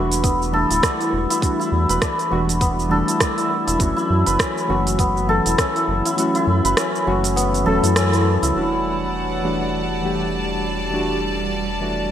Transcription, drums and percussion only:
0.12 open hi-hat, shaker
0.24 kick, open hi-hat, shaker
0.42 shaker
0.71 open hi-hat, shaker
0.83 kick, cross-stick, open hi-hat, shaker
1.01 open hi-hat, shaker
1.30 open hi-hat, shaker
1.42 kick, open hi-hat, shaker
1.61 shaker
1.89 open hi-hat, shaker
2.02 kick, cross-stick, open hi-hat, shaker
2.19 open hi-hat, shaker
2.49 open hi-hat, shaker
2.61 kick, open hi-hat, shaker
2.79 shaker
3.08 open hi-hat, shaker
3.20 kick, cross-stick, open hi-hat, shaker
3.38 open hi-hat, shaker
3.68 open hi-hat, shaker
3.80 kick, open hi-hat, shaker
3.98 shaker
4.27 open hi-hat, shaker
4.39 kick, cross-stick, open hi-hat, shaker
4.58 shaker
4.87 open hi-hat, shaker
4.99 kick, open hi-hat, shaker
5.17 shaker
5.46 open hi-hat, shaker
5.58 kick, cross-stick, open hi-hat, shaker
5.76 open hi-hat, shaker
6.06 open hi-hat, shaker
6.18 open hi-hat, shaker
6.35 open hi-hat, shaker
6.65 open hi-hat, shaker
6.77 cross-stick, open hi-hat, shaker
6.95 shaker
7.24 open hi-hat, shaker
7.37 open hi-hat, shaker
7.54 open hi-hat, shaker
7.84 open hi-hat, shaker
7.96 cross-stick, open hi-hat, shaker
8.13 open hi-hat, shaker
8.43 open hi-hat, shaker

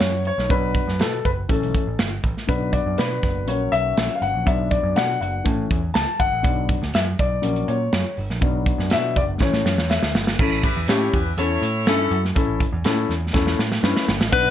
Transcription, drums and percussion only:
0.00 snare, closed hi-hat
0.25 closed hi-hat
0.39 snare
0.50 kick, closed hi-hat
0.75 kick, closed hi-hat
0.89 snare
1.00 snare, closed hi-hat
1.25 kick, closed hi-hat
1.49 kick, closed hi-hat
1.63 closed hi-hat
1.75 kick, closed hi-hat
1.99 snare, closed hi-hat
2.24 kick, closed hi-hat
2.37 snare
2.49 kick, closed hi-hat
2.73 kick, closed hi-hat
2.98 snare, closed hi-hat
3.23 kick, snare, closed hi-hat
3.48 closed hi-hat
3.73 closed hi-hat
3.98 snare, closed hi-hat
4.09 closed hi-hat
4.22 closed hi-hat
4.47 kick, closed hi-hat
4.71 kick, closed hi-hat
4.96 snare, closed hi-hat
5.22 closed hi-hat
5.46 kick, closed hi-hat
5.71 kick, closed hi-hat
5.95 snare, closed hi-hat
6.20 kick, closed hi-hat
6.44 kick, closed hi-hat
6.69 kick, closed hi-hat
6.83 snare
6.94 snare, closed hi-hat
7.19 kick, closed hi-hat
7.43 closed hi-hat
7.56 closed hi-hat
7.68 closed hi-hat
7.93 snare, closed hi-hat
8.17 open hi-hat
8.30 snare
8.42 kick, closed hi-hat
8.66 kick, closed hi-hat
8.80 snare
8.90 snare, closed hi-hat
9.16 kick, closed hi-hat
9.40 kick, snare
9.54 snare
9.66 snare
9.78 snare
9.91 snare
10.03 snare
10.15 snare
10.27 snare
10.39 kick, crash
10.64 kick, closed hi-hat
10.88 snare, closed hi-hat
11.14 kick, closed hi-hat
11.38 closed hi-hat
11.63 closed hi-hat
11.87 snare, closed hi-hat
12.11 closed hi-hat
12.25 snare
12.36 kick, closed hi-hat
12.60 kick, closed hi-hat
12.84 snare, closed hi-hat
13.10 snare, closed hi-hat
13.34 kick, snare
13.47 snare
13.59 snare
13.72 snare
13.84 snare
13.97 snare
14.08 snare
14.21 snare
14.33 kick, closed hi-hat

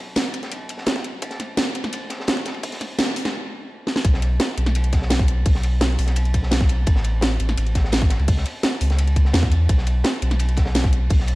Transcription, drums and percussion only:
0.16 snare, closed hi-hat, ride
0.34 closed hi-hat, ride
0.43 snare, closed hi-hat
0.52 closed hi-hat, ride
0.69 closed hi-hat, ride
0.78 snare
0.86 snare, closed hi-hat, ride
0.96 kick, snare
1.04 closed hi-hat, ride
1.22 kick, closed hi-hat, ride
1.31 snare, closed hi-hat
1.40 snare, closed hi-hat, ride
1.57 snare, closed hi-hat, ride
1.67 ride
1.75 closed hi-hat, ride
1.84 snare, closed hi-hat
1.93 closed hi-hat, ride
2.10 snare, closed hi-hat, ride
2.20 snare
2.27 snare, closed hi-hat, ride
2.37 kick, snare
2.45 snare, closed hi-hat, ride
2.54 ride
2.63 kick, closed hi-hat, open hi-hat
2.72 snare, closed hi-hat
2.81 kick, snare, closed hi-hat, ride
2.99 snare, closed hi-hat, ride
3.16 open hi-hat, ride
3.25 snare, closed hi-hat
3.87 snare
3.96 snare
4.05 kick, closed hi-hat, ride
4.14 snare
4.22 closed hi-hat, ride
4.40 snare, closed hi-hat, ride
4.49 ride
4.57 closed hi-hat, ride
4.66 snare, closed hi-hat
4.75 closed hi-hat, ride
4.84 closed hi-hat
4.93 kick, snare, closed hi-hat, ride
5.02 snare
5.10 snare, closed hi-hat, ride
5.19 kick, snare
5.28 closed hi-hat
5.46 kick, closed hi-hat, open hi-hat
5.55 snare
5.63 closed hi-hat, ride
5.81 snare, closed hi-hat, ride
5.98 open hi-hat, ride
6.07 snare, closed hi-hat
6.16 closed hi-hat, ride
6.25 closed hi-hat
6.34 kick, closed hi-hat, ride
6.43 snare
6.51 snare, closed hi-hat, ride
6.61 kick, snare
6.69 closed hi-hat, ride
6.87 kick, closed hi-hat, ride
6.96 snare
7.04 closed hi-hat, ride
7.21 snare, closed hi-hat, ride
7.30 ride
7.40 closed hi-hat, ride
7.49 snare, closed hi-hat
7.58 closed hi-hat, ride
7.67 closed hi-hat
7.75 kick, snare, closed hi-hat, ride
7.84 snare
7.92 snare, closed hi-hat, ride
8.01 kick, snare
8.10 snare, closed hi-hat, ride
8.19 ride
8.28 kick, closed hi-hat, open hi-hat
8.37 snare
8.46 closed hi-hat, ride
8.63 snare, closed hi-hat, ride
8.81 open hi-hat, ride
8.90 snare, closed hi-hat
8.99 closed hi-hat, ride
9.08 closed hi-hat
9.16 kick, closed hi-hat, ride
9.25 snare
9.33 snare, closed hi-hat, ride
9.42 kick, snare
9.52 closed hi-hat, ride
9.69 kick, closed hi-hat, ride
9.78 snare
9.86 closed hi-hat, ride
10.04 snare, closed hi-hat, ride
10.13 ride
10.22 closed hi-hat, ride
10.31 snare, closed hi-hat
10.39 closed hi-hat, ride
10.49 closed hi-hat
10.57 kick, snare, closed hi-hat, ride
10.66 snare
10.75 snare, closed hi-hat, ride
10.84 kick, snare
10.93 closed hi-hat
11.10 kick, closed hi-hat, open hi-hat
11.19 snare
11.27 closed hi-hat, ride

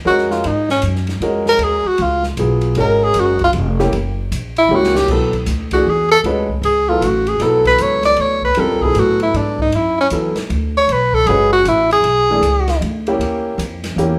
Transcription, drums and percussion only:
0.18 snare
0.31 snare
0.44 ride
0.69 snare
0.82 hi-hat pedal, ride
0.95 snare
1.07 snare, ride
1.22 ride
1.46 snare
1.59 ride
1.98 ride
2.23 snare
2.37 hi-hat pedal, ride
2.61 ride
2.75 ride
3.14 hi-hat pedal, ride
3.39 kick, ride
3.53 ride
3.79 snare
3.93 ride
4.32 hi-hat pedal, ride
4.56 ride
4.83 snare
4.95 snare
5.08 kick, crash
5.33 kick, ride
5.46 snare, hi-hat pedal, ride
5.71 kick, ride
6.24 ride
6.49 kick
6.63 ride
7.02 hi-hat pedal, ride
7.27 ride
7.40 snare, ride
7.65 kick, ride
7.78 hi-hat pedal, ride
8.03 snare, ride
8.16 ride
8.42 kick
8.55 ride
8.81 kick
8.95 hi-hat pedal, ride
9.20 ride
9.34 ride
9.59 kick
9.72 ride
10.10 hi-hat pedal, ride
10.36 snare, ride
10.50 ride
10.89 ride
11.13 kick
11.27 ride
11.65 hi-hat pedal, ride
11.91 ride
12.04 ride
12.43 hi-hat pedal, ride
12.68 snare, ride
12.82 ride
13.07 ride
13.21 ride
13.59 hi-hat pedal, ride
13.84 snare, ride
13.98 hi-hat pedal

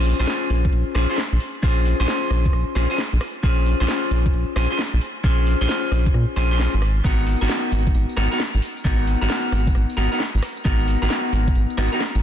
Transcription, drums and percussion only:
0.05 open hi-hat
0.28 snare, closed hi-hat
0.50 open hi-hat
0.65 kick
0.73 closed hi-hat
0.95 cross-stick, open hi-hat
1.10 closed hi-hat
1.18 snare, closed hi-hat
1.40 open hi-hat
1.55 closed hi-hat
1.63 kick, closed hi-hat
1.85 open hi-hat
2.08 snare, closed hi-hat
2.31 cross-stick, open hi-hat
2.46 kick
2.53 cross-stick, closed hi-hat
2.76 open hi-hat
2.90 closed hi-hat
2.98 snare, closed hi-hat
3.21 cross-stick, open hi-hat
3.36 closed hi-hat
3.43 kick, closed hi-hat
3.66 open hi-hat
3.88 snare, closed hi-hat
4.11 open hi-hat
4.26 kick
4.34 closed hi-hat
4.56 cross-stick, open hi-hat
4.71 closed hi-hat
4.79 snare, closed hi-hat
5.01 open hi-hat
5.16 closed hi-hat
5.24 kick, closed hi-hat
5.46 open hi-hat
5.69 snare, closed hi-hat
5.92 cross-stick, open hi-hat
6.06 kick
6.14 cross-stick, closed hi-hat
6.37 open hi-hat
6.52 closed hi-hat
6.59 snare, closed hi-hat
6.82 cross-stick, open hi-hat
6.97 closed hi-hat
7.04 kick, closed hi-hat, tambourine
7.19 tambourine
7.27 open hi-hat, tambourine
7.42 tambourine
7.49 snare, closed hi-hat, tambourine
7.72 open hi-hat, tambourine
7.87 kick, tambourine
7.95 closed hi-hat, tambourine
8.09 tambourine
8.17 cross-stick, open hi-hat, tambourine
8.32 closed hi-hat, tambourine
8.40 snare, closed hi-hat, tambourine
8.54 tambourine
8.62 open hi-hat, tambourine
8.77 closed hi-hat, tambourine
8.85 kick, closed hi-hat, tambourine
8.99 tambourine
9.07 open hi-hat, tambourine
9.22 tambourine
9.30 snare, closed hi-hat, tambourine
9.52 cross-stick, open hi-hat, tambourine
9.67 kick, tambourine
9.75 cross-stick, closed hi-hat, tambourine
9.90 tambourine
9.97 open hi-hat, tambourine
10.12 closed hi-hat, tambourine
10.20 snare, closed hi-hat, tambourine
10.35 tambourine
10.43 cross-stick, open hi-hat, tambourine
10.57 closed hi-hat, tambourine
10.65 kick, closed hi-hat, tambourine
10.80 tambourine
10.88 open hi-hat, tambourine
11.02 tambourine
11.10 snare, closed hi-hat, tambourine
11.33 open hi-hat, tambourine
11.48 kick, tambourine
11.55 closed hi-hat, tambourine
11.70 tambourine
11.78 cross-stick, open hi-hat, tambourine
11.93 closed hi-hat, tambourine
12.00 snare, closed hi-hat, tambourine
12.15 tambourine

